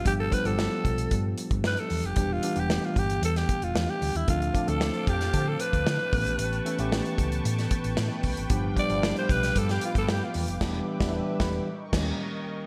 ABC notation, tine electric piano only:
X:1
M:4/4
L:1/16
Q:1/4=114
K:Gmix
V:1 name="Tine electric piano"
[F,G,B,DG]2 [F,G,B,DF] [F,G,B,DG]8 z4 z | [E,G,B,DG]2 [E,G,B,DG] [E,G,B,DG]8 z4 z | [F,A,CDA]2 [F,A,CDA] [F,A,CDA]8 z3 [E,A,B,^CG]2- | [E,A,B,^CG]2 [E,A,B,CA] [E,A,B,CG]8 z4 z |
[F,G,B,DG]2 [F,G,B,DG] [F,G,B,DG]8 z4 z | [E,G,B,DG]2 z [E,G,B,DG]2 z [EB]2 z2 [_E,G,_B,_DG]2 z4 |]